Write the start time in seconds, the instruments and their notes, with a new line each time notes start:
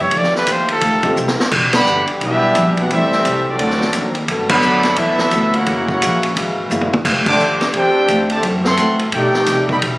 Already playing: upright bass F#2, trombone section G4
0.01 trumpet C#5
0.11 upright bass F2, trombone section D#3 A3 F4, steel-string acoustic guitar F3 A3 D#4 G4, kick, ride
0.18 trumpet D5
0.24 snare
0.36 trumpet B4, snare
0.47 upright bass D#2, steel-string acoustic guitar F3 A3 D#4 G4, kick, hi-hat pedal, ride
0.52 trumpet C5
0.68 trumpet A4, ride
0.81 upright bass D2, steel-string acoustic guitar F3 A3 D#4 G4, kick, ride
1.03 grand piano C4 D#4 F4 G4 A4, kick, ride
1.16 upright bass C2, steel-string acoustic guitar F3 A3 D#4 G4, hi-hat pedal
1.28 snare
1.37 muted upright bass stroke, snare
1.50 upright bass E1, trombone section E3 G3 D4 G4, steel-string acoustic guitar E3 G3, kick, crash
1.54 steel-string acoustic guitar D4 F#4
1.73 trombone section D3 G3 B3, trumpet section G4 D5 F#5 B5, snare, ride
1.85 upright bass G1, steel-string acoustic guitar E3 G3 D4 F#4, hi-hat pedal
2.07 muted upright bass stroke, ride
2.20 upright bass B1, steel-string acoustic guitar E3 G3 D4 F#4, trombone section G3 B3 E4, kick, ride
2.26 trumpet section D4 G4 B4 E5
2.54 upright bass A#1, steel-string acoustic guitar E3 G3 D4 F#4, kick, hi-hat pedal, ride
2.77 trombone section B3 D4 F#4, trumpet section D4 G4 B4 F#5, ride
2.87 upright bass A1, steel-string acoustic guitar A2 G3, trombone section A3 C4 G4, kick, ride
2.91 trombone section G3 C4 E4, steel-string acoustic guitar C4 E4, trumpet section C4 G4 A4 E5
3.12 snare
3.25 upright bass C2, steel-string acoustic guitar A2 G3 C4 E4, kick, hi-hat pedal, ride
3.49 trombone section F#3 A3 D4, trumpet section C4 F#4 A4 D5
3.57 upright bass D2, steel-string acoustic guitar D3 F#3, trombone section D#3 D4 F#4, kick, ride
3.61 steel-string acoustic guitar C4 D#4
3.71 snare
3.81 snare
3.93 upright bass D#2, steel-string acoustic guitar D3 F#3 C4 D#4, kick, hi-hat pedal, ride
4.15 ride
4.27 upright bass G2, steel-string acoustic guitar G3 B3 F#4, trombone section A3 B3 F#4 A4, kick, ride
4.31 steel-string acoustic guitar A4
4.49 trombone section D3 F#3 B3, trumpet section A4 D5 F#5 B5, muted upright bass stroke, kick, crash
4.62 upright bass F#2, steel-string acoustic guitar G3 B3 F#4 A4, hi-hat pedal
4.83 snare, ride
4.96 upright bass E2, trombone section F#3 B3 E4, steel-string acoustic guitar G3 B3 F#4 A4, trumpet section D4 A4 B4 E5, kick, ride
5.19 snare
5.31 upright bass D2, steel-string acoustic guitar G3 B3 F#4 A4, kick, hi-hat pedal, ride
5.54 trombone section A#3 C#4 F#4, trumpet section E4 A#4 C#5 F#5, ride
5.66 upright bass F#1, trombone section E3 G#3 A#3 F#4, steel-string acoustic guitar F#3 A#3 E4 G#4, kick, ride
5.88 trombone section A#3 C#4 F#4, trumpet section E4 A#4 C#5 F#5, kick
6.01 upright bass A#1, steel-string acoustic guitar F#3 A#3 E4 G#4, kick, hi-hat pedal, ride
6.23 ride
6.35 upright bass G#1, steel-string acoustic guitar F#3 A#3 E4 G#4, kick, ride
6.70 upright bass F#1, steel-string acoustic guitar F#3 A#3 E4 G#4, hi-hat pedal, high tom
6.81 high tom
6.93 high tom
7.03 upright bass F1, steel-string acoustic guitar F3 A3 D4 G4, trombone section A3 D4 F4 G4, kick, snare, crash
7.26 trombone section D3 A3 D4, trumpet section C5 G5 A5 D6, kick, crash
7.38 upright bass A1, steel-string acoustic guitar F3 A3 D4 G4, hi-hat pedal
7.59 muted upright bass stroke, snare, ride
7.73 upright bass E2, steel-string acoustic guitar F3 A3 D4 G4, trombone section C4 D4 G4, trumpet section D4 A4 C5 G5, kick, ride
8.08 upright bass D2, steel-string acoustic guitar F3 A3 D4 G4, kick, hi-hat pedal, ride
8.30 trombone section C3 D3 A3, trumpet section G4 C5 D5 A5, ride
8.42 upright bass F#2, trombone section E3 C4 F#4, steel-string acoustic guitar F#3 C4, kick, ride
8.46 steel-string acoustic guitar E4 A4
8.65 trombone section E3 A3 C4, trumpet section A4 E5 F#5 C6, snare
8.77 upright bass A2, steel-string acoustic guitar F#3 C4 E4 A4, kick, hi-hat pedal, ride
8.99 ride
9.12 steel-string acoustic guitar B2 A3 D#4 G4, upright bass B2, trombone section D#3 A3 B3 D#4 G4, trumpet section D#4 A4 D5 G5, kick, ride
9.33 muted upright bass stroke, snare
9.46 steel-string acoustic guitar B2 A3 D#4 G4, upright bass C3, kick, snare, hi-hat pedal, ride
9.69 trombone section D#3 G3 B3, trumpet section A4 D#5 G5 B5, kick
9.80 upright bass B2, trombone section E3 D4 E4 G4, steel-string acoustic guitar E3 G3 D4 F#4, kick, ride